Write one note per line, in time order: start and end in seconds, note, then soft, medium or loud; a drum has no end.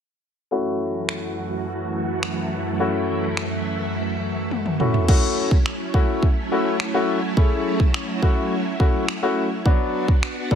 0.51 5.05 F#2 medium
0.51 5.05 E3 medium
0.51 2.76 A3 medium
0.51 5.05 A3 medium
0.51 2.76 C#4 medium
0.51 2.76 E4 medium
0.51 2.78 F#4 medium
0.51 2.76 F#4 medium
1.09 finger snap loud
2.23 finger snap loud
2.79 4.76 A3 medium
2.79 4.76 C#4 medium
2.79 5.06 E4 medium
2.79 4.76 E4 medium
2.79 4.76 F#4 medium
3.37 finger snap loud
4.51 high tom medium
4.66 mid tom medium
4.80 5.07 A3 medium
4.80 5.07 C#4 medium
4.80 5.07 E4 medium
4.80 5.07 F#4 medium
4.80 mid tom medium
4.94 floor tom medium
5.08 9.62 F#3 medium
5.08 5.53 A3 medium
5.08 9.62 A3 loud
5.08 5.53 C#4 medium
5.08 9.62 C#4 medium
5.08 9.62 E4 medium
5.08 5.53 E4 medium
5.08 5.53 F#4 medium
5.08 kick loud
5.08 crash medium
5.51 kick medium
5.66 finger snap loud
5.94 6.24 A3 medium
5.94 6.24 C#4 medium
5.94 6.24 E4 medium
5.94 6.24 F#4 medium
5.94 kick medium
6.23 kick medium
6.51 6.74 A3 medium
6.51 6.74 C#4 medium
6.51 6.74 E4 medium
6.51 6.74 F#4 medium
6.80 finger snap loud
6.94 7.16 A3 medium
6.94 7.17 C#4 medium
6.94 7.17 E4 medium
6.94 7.17 F#4 medium
7.37 7.82 A3 medium
7.37 7.82 C#4 medium
7.37 7.82 E4 medium
7.37 7.82 G#4 medium
7.37 kick loud
7.80 kick medium
7.94 finger snap loud
8.22 8.52 A3 medium
8.22 8.52 C#4 medium
8.22 8.53 E4 medium
8.22 8.53 F#4 medium
8.22 kick medium
8.80 9.02 A3 medium
8.80 9.02 C#4 medium
8.80 9.02 E4 medium
8.80 9.02 F#4 medium
8.80 kick medium
9.09 finger snap loud
9.22 9.45 A3 medium
9.22 9.45 C#4 medium
9.22 9.45 E4 medium
9.22 9.45 F#4 medium
9.65 10.10 F#3 medium
9.65 10.10 B3 medium
9.65 10.55 B3 medium
9.65 10.10 D4 medium
9.65 10.55 D4 medium
9.65 10.55 F#4 medium
9.65 10.10 F#4 medium
9.65 kick loud
10.08 kick medium
10.23 finger snap loud
10.51 10.55 F#3 medium
10.51 10.55 B3 medium
10.51 10.55 D4 medium
10.51 10.55 A4 medium
10.51 kick medium